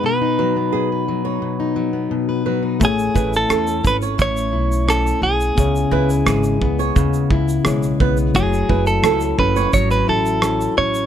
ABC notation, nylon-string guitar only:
X:1
M:4/4
L:1/16
Q:1/4=87
K:Alyd
V:1 name="Nylon-string guitar"
z2 B z G z2 c3 z4 B z | z2 B z A z2 c3 z6 | z2 B z G z2 c3 z4 B z | z2 B z A z2 c3 z6 |]